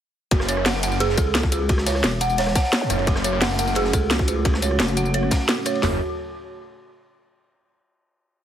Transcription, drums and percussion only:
0.31 kick, closed hi-hat, ride
0.40 cross-stick, snare
0.49 closed hi-hat, ride, tambourine
0.57 cross-stick
0.65 snare, closed hi-hat, open hi-hat
0.74 snare
0.83 closed hi-hat, ride, tambourine
0.92 tambourine
1.00 cross-stick, closed hi-hat, ride
1.09 snare
1.18 kick, closed hi-hat, ride, tambourine
1.34 snare, closed hi-hat, ride
1.43 kick, snare
1.52 closed hi-hat, ride, tambourine
1.69 kick, closed hi-hat, ride
1.78 cross-stick, snare
1.86 snare, closed hi-hat, open hi-hat, tambourine
1.95 cross-stick, snare
2.03 snare, closed hi-hat, ride
2.21 closed hi-hat, ride, tambourine
2.30 tambourine
2.38 snare, closed hi-hat, open hi-hat
2.47 cross-stick, snare
2.55 kick, snare, closed hi-hat, open hi-hat, tambourine
2.64 snare
2.73 snare, closed hi-hat, ride
2.81 snare
2.90 cross-stick, closed hi-hat, ride, tambourine
2.99 ride
3.07 kick, closed hi-hat, ride
3.15 cross-stick, snare
3.24 closed hi-hat, ride, tambourine
3.33 cross-stick
3.42 snare, closed hi-hat, open hi-hat
3.50 snare
3.59 closed hi-hat, ride, tambourine
3.67 tambourine
3.75 cross-stick, closed hi-hat, ride
3.85 snare
3.93 kick, closed hi-hat, ride, tambourine
4.10 snare, closed hi-hat, ride
4.19 kick, snare
4.27 closed hi-hat, ride, tambourine
4.45 kick, closed hi-hat, ride
4.54 cross-stick, snare
4.62 closed hi-hat, ride, tambourine
4.71 cross-stick
4.79 snare, closed hi-hat, ride
4.88 tambourine
4.97 closed hi-hat, ride, tambourine
5.05 tambourine
5.14 closed hi-hat, ride
5.23 cross-stick
5.31 kick, snare, closed hi-hat, open hi-hat, tambourine
5.40 snare
5.49 snare, closed hi-hat, ride
5.65 cross-stick, closed hi-hat, ride, tambourine
5.75 ride
5.83 snare, floor tom, open hi-hat

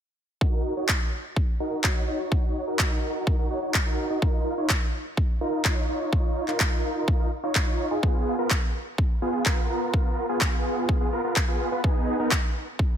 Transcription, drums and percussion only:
0.41 kick
0.89 kick, clap
1.36 kick
1.84 kick, clap
2.32 kick
2.79 kick, clap
3.27 kick
3.74 kick, clap
4.22 kick
4.69 kick, clap
5.17 kick
5.65 kick, clap
6.13 kick
6.48 clap
6.60 kick, clap
7.08 kick
7.55 kick, clap
8.03 kick
8.50 kick, clap
8.98 kick
9.46 kick, clap
9.94 kick
10.41 kick, clap
10.89 kick
11.36 kick, clap
11.84 kick
12.31 kick, clap
12.79 kick

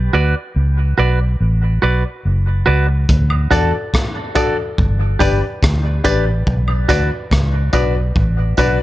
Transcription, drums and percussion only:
3.09 kick, hi-hat pedal
3.30 high woodblock
3.51 kick, closed hi-hat, tambourine
3.94 kick, cross-stick
4.35 kick, closed hi-hat, tambourine, high woodblock
4.78 kick
5.20 kick, closed hi-hat, tambourine
5.63 kick, cross-stick
6.05 kick, closed hi-hat, tambourine
6.47 kick
6.68 high woodblock
6.89 kick, cross-stick, closed hi-hat, tambourine
7.31 kick, cross-stick
7.73 kick, closed hi-hat, tambourine, high woodblock
8.16 kick
8.57 kick, closed hi-hat, tambourine

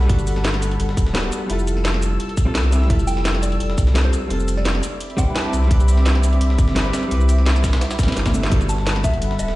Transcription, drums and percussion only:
0.01 snare
0.09 kick, closed hi-hat
0.19 closed hi-hat, shaker
0.27 closed hi-hat, open hi-hat, shaker
0.36 snare
0.44 snare, closed hi-hat
0.54 snare, closed hi-hat
0.62 closed hi-hat, shaker
0.71 closed hi-hat
0.80 closed hi-hat
0.89 snare
0.97 kick, closed hi-hat, shaker
1.07 snare
1.15 snare, closed hi-hat
1.24 snare
1.32 closed hi-hat, shaker
1.50 closed hi-hat
1.59 shaker
1.67 closed hi-hat, shaker
1.77 snare
1.85 snare, closed hi-hat
1.94 snare
2.02 closed hi-hat, shaker
2.20 closed hi-hat
2.29 closed hi-hat
2.37 kick, closed hi-hat, shaker
2.55 snare, closed hi-hat
2.64 snare
2.72 closed hi-hat, shaker
2.82 snare
2.90 kick, closed hi-hat
2.99 closed hi-hat, shaker
3.07 closed hi-hat, open hi-hat, shaker
3.17 snare
3.25 snare, closed hi-hat
3.35 snare, closed hi-hat
3.43 closed hi-hat, shaker
3.52 closed hi-hat
3.60 closed hi-hat
3.70 snare
3.78 kick, closed hi-hat, shaker
3.87 snare
3.95 snare, closed hi-hat
4.05 snare
4.13 closed hi-hat, shaker
4.30 closed hi-hat
4.40 shaker
4.48 closed hi-hat, shaker
4.57 snare
4.65 snare, closed hi-hat
4.75 snare
4.83 closed hi-hat, shaker
5.00 closed hi-hat
5.10 closed hi-hat
5.18 kick, closed hi-hat, shaker
5.36 snare, closed hi-hat
5.45 snare
5.53 closed hi-hat, shaker
5.63 snare
5.71 kick, closed hi-hat
5.80 closed hi-hat, shaker
5.88 closed hi-hat, open hi-hat, shaker
5.97 snare
6.06 snare, closed hi-hat
6.15 snare, closed hi-hat
6.24 closed hi-hat, shaker
6.33 closed hi-hat
6.41 closed hi-hat
6.50 snare
6.58 kick, closed hi-hat, shaker
6.68 snare
6.76 snare, closed hi-hat
6.86 snare
6.93 snare, closed hi-hat, shaker
7.03 closed hi-hat
7.11 closed hi-hat
7.21 shaker
7.29 closed hi-hat, shaker
7.38 snare
7.46 snare, closed hi-hat
7.56 snare, shaker
7.64 kick, snare, closed hi-hat, shaker
7.73 snare, closed hi-hat
7.81 snare, closed hi-hat
7.91 snare, closed hi-hat, shaker
7.99 kick, snare, closed hi-hat, shaker
8.03 snare, closed hi-hat
8.08 snare, closed hi-hat
8.12 snare, closed hi-hat
8.16 snare, closed hi-hat
8.26 kick, snare, closed hi-hat, high tom, shaker
8.34 closed hi-hat, shaker
8.43 snare, closed hi-hat
8.52 kick, closed hi-hat
8.61 closed hi-hat, shaker
8.69 closed hi-hat, open hi-hat, shaker
8.78 snare
8.87 snare, closed hi-hat
8.96 snare, closed hi-hat
9.04 kick, closed hi-hat, shaker
9.13 closed hi-hat
9.22 closed hi-hat
9.31 snare
9.39 closed hi-hat, shaker
9.48 snare

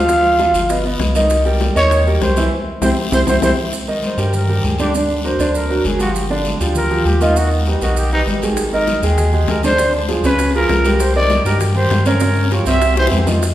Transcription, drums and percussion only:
0.09 high bongo, high conga, long guiro, maracas
0.23 high bongo, high conga, maracas
0.39 high bongo, high conga, short guiro, maracas
0.54 high bongo, high conga, short guiro, maracas
0.69 high bongo, high conga, long guiro, maracas
0.85 high conga, maracas
1.00 high bongo, low bongo, high conga, short guiro, maracas
1.15 high bongo, high conga, short guiro, maracas
1.30 high bongo, long guiro, maracas
1.46 high conga, maracas
1.60 high bongo, high conga, short guiro, maracas
1.76 high conga, short guiro, maracas
1.91 high bongo, high conga, low conga, long guiro, maracas
2.06 high conga, maracas
2.21 high bongo, low bongo, high conga, short guiro, maracas
2.36 high conga, short guiro, maracas
2.82 low bongo, high conga, long guiro, maracas
3.12 low bongo, high conga, long guiro, maracas
3.27 low bongo, high conga, long guiro, maracas
3.42 low bongo, high conga, long guiro, maracas
3.73 high conga, long guiro, maracas
3.87 high conga, maracas
4.03 high conga, short guiro, maracas
4.18 high conga, short guiro, maracas
4.33 high conga, low conga, long guiro, maracas
4.48 high conga, low conga, maracas
4.63 high conga, short guiro, maracas
4.78 high conga, short guiro, maracas
4.94 high conga, long guiro, maracas
5.10 maracas
5.24 high conga, short guiro, maracas
5.39 high conga, short guiro, maracas
5.54 high conga, long guiro, maracas
5.70 high conga, maracas
5.85 high conga, short guiro, maracas
6.00 high conga, short guiro, maracas
6.15 high conga, long guiro, maracas
6.30 high conga, maracas
6.45 high conga, short guiro, maracas
6.60 high conga, short guiro, maracas
6.75 high conga, low conga, long guiro, maracas
6.90 high conga, low conga, maracas
7.06 high conga, short guiro, maracas
7.21 high conga, short guiro, maracas
7.36 high conga, long guiro, maracas
7.51 high conga, maracas
7.66 high conga, short guiro, maracas
7.81 high conga, short guiro, maracas
7.96 high conga, long guiro, maracas
8.12 high conga, maracas
8.27 high conga, short guiro, maracas
8.42 high conga, short guiro, maracas
8.57 high bongo, high conga, maracas
8.73 high conga, maracas
8.87 high bongo, high conga, short guiro, maracas
9.03 high conga, short guiro, maracas
9.18 high bongo, high conga, low conga, long guiro, maracas
9.33 high conga, low conga, maracas
9.47 high bongo, low bongo, high conga, short guiro, maracas
9.63 high conga, short guiro, maracas
9.78 high bongo, high conga, long guiro, maracas
9.93 high bongo, high conga, maracas
10.09 high bongo, high conga, short guiro, maracas
10.24 high bongo, high conga, short guiro, maracas
10.39 high bongo, high conga, long guiro, maracas
10.54 high conga, maracas
10.69 high bongo, low bongo, high conga, short guiro, maracas
10.85 high bongo, high conga, short guiro, maracas
11.00 high bongo, high conga, long guiro, maracas
11.15 high conga, maracas
11.30 high bongo, high conga, short guiro, maracas
11.45 high conga, short guiro, maracas
11.60 high bongo, high conga, low conga, long guiro, maracas
11.75 high conga, low conga, maracas
11.90 high bongo, low bongo, high conga, short guiro, maracas
12.06 high conga, short guiro, maracas
12.20 high bongo, high conga, long guiro, maracas
12.35 high bongo, high conga, maracas
12.50 high bongo, high conga, short guiro, maracas
12.66 high bongo, short guiro, maracas
12.81 high bongo, high conga, long guiro, maracas
12.97 high bongo, high conga, maracas
13.07 high bongo
13.12 high conga, short guiro, maracas
13.18 low bongo
13.27 low bongo, high conga, short guiro, maracas
13.42 high bongo, high conga, long guiro, maracas

